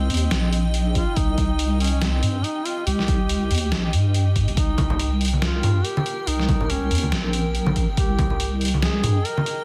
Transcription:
Already playing: duduk C4, ambient pad D#5 G5
0.10 wobble bass D#2, closed hi-hat
0.14 closed hi-hat
0.17 closed hi-hat
0.31 wobble bass A#1, snare, closed hi-hat
0.53 closed hi-hat
0.74 closed hi-hat
0.95 duduk F4, kick, closed hi-hat
1.16 wobble bass C2, duduk D#4, kick, closed hi-hat
1.38 kick, closed hi-hat
1.59 closed hi-hat
1.80 duduk C#4, closed hi-hat
1.84 closed hi-hat
1.87 closed hi-hat
2.02 duduk C4, snare, closed hi-hat
2.23 wobble bass G2, closed hi-hat
2.44 duduk D#4, closed hi-hat
2.65 duduk F4, closed hi-hat
2.86 wobble bass C2, duduk G4, closed hi-hat
2.99 snare
3.08 kick, closed hi-hat
3.29 closed hi-hat
3.51 wobble bass D#2, closed hi-hat
3.55 closed hi-hat
3.58 closed hi-hat
3.72 wobble bass A#1, snare, closed hi-hat
3.93 wobble bass G2, closed hi-hat
4.14 closed hi-hat
4.36 kick, closed hi-hat
4.48 wobble bass C2, closed hi-hat
4.57 wobble bass C2, duduk D#4, ambient pad A#4, kick, closed hi-hat
4.78 kick, closed hi-hat, high conga
4.90 low conga
4.99 closed hi-hat
5.21 closed hi-hat
5.25 closed hi-hat
5.28 closed hi-hat
5.33 high conga
5.42 duduk F4, snare, closed hi-hat
5.63 wobble bass G2, closed hi-hat, low conga
5.85 duduk G4, closed hi-hat
5.97 high conga
6.06 closed hi-hat
6.27 wobble bass C2, duduk D#4, closed hi-hat
6.40 snare
6.49 kick, closed hi-hat, high conga
6.61 low conga
6.70 duduk C#4, closed hi-hat
6.91 wobble bass D#2, closed hi-hat
6.95 closed hi-hat
6.98 closed hi-hat
7.03 high conga
7.12 wobble bass A#1, duduk C4, snare, closed hi-hat
7.33 closed hi-hat
7.55 closed hi-hat
7.66 high conga
7.76 kick, closed hi-hat
7.97 wobble bass C2, duduk G4, ambient pad D#5, kick, closed hi-hat
8.19 kick, closed hi-hat, high conga
8.30 low conga
8.40 closed hi-hat
8.61 closed hi-hat
8.65 closed hi-hat
8.68 closed hi-hat
8.74 high conga
8.82 duduk G#4, snare, closed hi-hat
9.03 wobble bass G2, closed hi-hat, low conga
9.25 duduk A#4, closed hi-hat
9.37 high conga
9.46 closed hi-hat

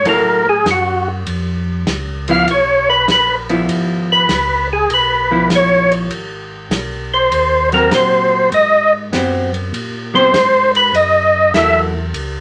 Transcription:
0.05 tonewheel organ A2 A#4, hollow-body jazz guitar F#3 A#3 E4 A4, ride
0.49 tonewheel organ G#4
0.65 tonewheel organ F#2, snare, hi-hat pedal, ride
0.71 tonewheel organ F#4
1.27 tonewheel organ F2, ride
1.86 tonewheel organ C#2, snare, hi-hat pedal, ride
2.28 hollow-body jazz guitar F3 B3 E4, tonewheel organ F5, ride
2.47 tonewheel organ B1, ride
2.51 tonewheel organ C#5
2.90 tonewheel organ B4
3.07 tonewheel organ A#1, snare, hi-hat pedal, ride
3.12 tonewheel organ B4
3.49 hollow-body jazz guitar F3 B3 E4, ride
3.69 tonewheel organ G#1, ride
4.12 tonewheel organ B4
4.28 tonewheel organ C#2, snare, hi-hat pedal, ride
4.73 tonewheel organ G#4
4.88 tonewheel organ B1, ride
4.94 tonewheel organ B4
5.31 hollow-body jazz guitar F3 B3 E4
5.49 tonewheel organ A#1, snare, hi-hat pedal, ride
5.55 tonewheel organ C#5
5.92 ride
6.10 tonewheel organ G#1, ride
6.70 tonewheel organ B1, snare, hi-hat pedal, ride
7.14 tonewheel organ C5
7.31 tonewheel organ D#2, ride
7.72 hollow-body jazz guitar F#3 C4, tonewheel organ A#4, ride
7.91 tonewheel organ A#2 C5, snare, hi-hat pedal, ride
8.52 tonewheel organ G#2 D#5, ride
9.12 tonewheel organ F#2, hollow-body jazz guitar F#3 B3 C4, snare, hi-hat pedal, ride
9.54 ride
9.72 tonewheel organ A#2, ride
10.14 hollow-body jazz guitar F#3 B3 C4, tonewheel organ C5
10.33 tonewheel organ G#2, snare, hi-hat pedal, ride
10.75 tonewheel organ B4, ride
10.93 tonewheel organ F#2 D#5, ride
11.54 tonewheel organ E2 E5, hollow-body jazz guitar F#3 A#3 E4 A4, snare, hi-hat pedal, ride
12.14 tonewheel organ C#2, ride

